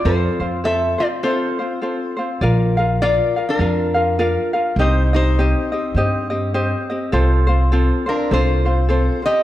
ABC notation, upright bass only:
X:1
M:4/4
L:1/8
Q:"Swing" 1/4=102
K:F
V:1 name="Upright bass" clef=bass
F,, F,,3 z4 | [K:Bb] B,,,4 F,,4 | C,,4 G,,4 | C,,4 C,,4 |]